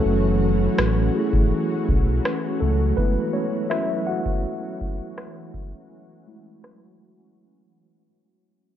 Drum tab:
SD |----r-------r---|----r-------r---|----r-----------|
BD |-------o--o-----|o------o--o---o-|----------------|